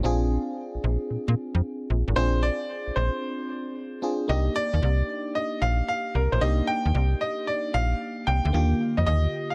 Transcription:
0.03 fm bass A#1, fm electric piano C4 D4 F4 G#4
0.75 fm bass A#1
0.84 fm bass A#1
1.10 fm bass A#2
1.28 fm bass A#2
1.55 fm bass F2
1.90 fm bass A#1
2.08 fm bass G#1
2.16 fm bass A#1, fm electric piano C4 D4 F4 G#4, grand piano C5
2.43 grand piano D5
2.87 fm bass A#1
2.96 fm bass A#1, grand piano C5
4.02 fm electric piano C4 D4 F4 G#4
4.28 fm bass C2, fm electric piano A#3 D4 D#4 G4, grand piano D#5
4.56 grand piano D5
4.73 fm bass D#2
4.82 fm bass C2
5.35 grand piano D#5
5.62 fm bass A#1, grand piano F5
5.88 grand piano F5
6.15 fm bass C2, grand piano A#4
6.32 fm bass A#1, grand piano C5
6.40 fm bass C2, fm electric piano A#3 D4 D#4 G4, grand piano D#5
6.67 grand piano G5
6.85 fm bass D#2
6.95 fm bass C2
7.21 grand piano D#5
7.47 grand piano D5
7.74 fm bass A#1, grand piano F5
8.27 fm bass C2, grand piano G5
8.45 fm bass D2
8.53 fm bass D#2, fm electric piano D3 A#3 F4 G4
8.97 fm bass F2, grand piano D#5
9.06 fm bass D#2, grand piano D#5
9.50 grand piano F5

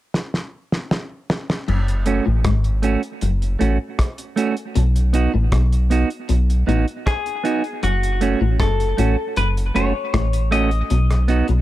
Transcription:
0.14 snare
0.34 snare
0.72 snare
0.91 snare
1.30 snare
1.50 snare
1.68 sub bass F#1, clean electric guitar F#2, crash
1.88 closed hi-hat
2.06 clean electric guitar A3 C#4 F#4, closed hi-hat
2.26 sub bass A1, clean electric guitar A2
2.44 sub bass G#1, clean electric guitar G#2, kick, cross-stick, closed hi-hat
2.64 closed hi-hat
2.82 clean electric guitar A3 C#4 F#4, closed hi-hat
3.03 closed hi-hat
3.21 sub bass F#1, clean electric guitar F#2, closed hi-hat
3.42 closed hi-hat
3.59 sub bass A1, clean electric guitar A2 A3 C#4 F#4, closed hi-hat
3.99 kick, cross-stick, closed hi-hat
4.18 closed hi-hat
4.36 clean electric guitar A3 C#4 F#4, closed hi-hat
4.57 closed hi-hat
4.75 sub bass B1, clean electric guitar B2, closed hi-hat
4.96 closed hi-hat
5.13 clean electric guitar B3 D#4 F#4, closed hi-hat
5.34 sub bass A1, clean electric guitar A2
5.52 sub bass B1, clean electric guitar B2, kick, cross-stick, closed hi-hat
5.73 closed hi-hat
5.90 clean electric guitar B3 D#4 F#4, closed hi-hat
6.10 closed hi-hat
6.29 sub bass B1, clean electric guitar B2, closed hi-hat
6.50 closed hi-hat
6.67 sub bass A1, clean electric guitar A2 B3 D#4 F#4, closed hi-hat
6.88 closed hi-hat
7.07 clean electric guitar G#4, kick, cross-stick, closed hi-hat
7.26 closed hi-hat
7.44 clean electric guitar B3 D#4 F#4, closed hi-hat
7.64 closed hi-hat
7.83 sub bass F#1, clean electric guitar F#2 F#4, closed hi-hat
8.03 closed hi-hat
8.21 clean electric guitar A3 C#4 F#4, closed hi-hat
8.41 sub bass A1, clean electric guitar A2
8.60 sub bass F#1, clean electric guitar F#2 A4, kick, cross-stick, closed hi-hat
8.80 closed hi-hat
8.97 sub bass A1, clean electric guitar A2 A3 C#4 F#4, closed hi-hat
9.36 sub bass F#1, clean electric guitar F#2 B4, closed hi-hat
9.57 closed hi-hat
9.75 sub bass F#1, clean electric guitar F#2 A3 C#4 F#4 C#5, closed hi-hat
9.94 muted clean electric guitar stroke
10.14 sub bass A1, clean electric guitar A2, kick, cross-stick, closed hi-hat
10.33 closed hi-hat
10.51 clean electric guitar A3 C#4 F#4 D#5, closed hi-hat
10.71 closed hi-hat
10.90 sub bass B1, clean electric guitar B2, closed hi-hat
11.10 cross-stick, closed hi-hat
11.28 clean electric guitar B3 D#4 F#4, closed hi-hat
11.48 sub bass B1, clean electric guitar B2, closed hi-hat

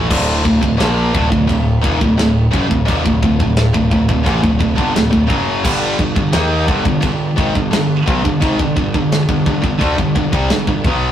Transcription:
0.09 picked electric bass D1, distorted electric guitar D2 A2 D3, kick, crash, china
0.43 picked electric bass D1, distorted electric guitar D2 A2, kick
0.61 picked electric bass D1, distorted electric guitar D2 A2, kick
0.77 picked electric bass A#1, distorted electric guitar A#2 F3 A#3, snare, china
1.13 picked electric bass D1, distorted electric guitar D2 A2, kick
1.30 picked electric bass D1, distorted electric guitar D2 A2, kick
1.47 picked electric bass D1, distorted electric guitar D2 A2, kick, china
1.82 picked electric bass D#1, distorted electric guitar D#2 A#2, kick
2.00 picked electric bass D1, distorted electric guitar D2 A2, kick
2.17 picked electric bass D1, distorted electric guitar D2 A2, snare, china
2.51 picked electric bass F#1, distorted electric guitar F#2 C#3, kick
2.68 picked electric bass D1, distorted electric guitar D2 A2, kick
2.85 picked electric bass D#1, distorted electric guitar D#2 A#2, kick
2.89 china
3.04 picked electric bass D1, distorted electric guitar D2 A2, kick
3.22 picked electric bass D1, distorted electric guitar D2 A2, kick
3.39 picked electric bass D1, distorted electric guitar D2 A2, kick
3.56 snare, china
3.74 picked electric bass D1, distorted electric guitar D2 A2, kick
3.91 picked electric bass D1, distorted electric guitar D2 A2, kick
4.09 picked electric bass D1, distorted electric guitar D2 A2, kick
4.24 picked electric bass A1, distorted electric guitar A2 E3, kick, china
4.42 picked electric bass D1, distorted electric guitar D2 A2, kick
4.60 picked electric bass D1, distorted electric guitar D2 A2, kick
4.76 picked electric bass G1, distorted electric guitar G2 D3, kick
4.95 picked electric bass D1, distorted electric guitar D2 A2, snare, china
5.10 picked electric bass D1, distorted electric guitar D2 A2, kick
5.27 picked electric bass F#1, distorted electric guitar F#2 C#3 F#3, kick
5.63 picked electric bass G1, distorted electric guitar G2 D3 G3, kick, china, crash
5.99 picked electric bass G1, distorted electric guitar G2 D3, kick
6.15 picked electric bass G1, distorted electric guitar G2 D3, kick
6.32 picked electric bass D#2, distorted electric guitar D#3 A#3 D#4, snare, china
6.66 picked electric bass G1, distorted electric guitar G2 D3, kick
6.84 picked electric bass G1, distorted electric guitar G2 D3, kick
7.00 picked electric bass G1, distorted electric guitar G2 D3, kick, china
7.36 picked electric bass G#1, distorted electric guitar G#2 D#3, kick
7.54 picked electric bass G1, distorted electric guitar G2 D3, kick
7.71 picked electric bass G1, distorted electric guitar G2 D3, snare, china
8.06 picked electric bass B1, distorted electric guitar B2 F#3, kick
8.23 picked electric bass G1, distorted electric guitar G2 D3, kick
8.41 picked electric bass G#1, distorted electric guitar G#2 D#3, kick, china
8.59 picked electric bass G1, distorted electric guitar G2 D3, kick
8.76 picked electric bass G1, distorted electric guitar G2 D3, kick
8.94 picked electric bass G1, distorted electric guitar G2 D3, kick
9.12 snare, china
9.29 picked electric bass G1, distorted electric guitar G2 D3, kick
9.46 picked electric bass G1, distorted electric guitar G2 D3, kick
9.62 picked electric bass G1, distorted electric guitar G2 D3, kick
9.79 picked electric bass D2, distorted electric guitar D3 A3, kick, china
9.97 picked electric bass G1, distorted electric guitar G2 D3, kick
10.15 picked electric bass G1, distorted electric guitar G2 D3, kick
10.32 picked electric bass C2, distorted electric guitar C3 G3, kick
10.50 picked electric bass G1, distorted electric guitar G2 D3, snare, china
10.67 picked electric bass G1, distorted electric guitar G2 D3, kick
10.85 picked electric bass B1, distorted electric guitar B2 F#3 B3, kick

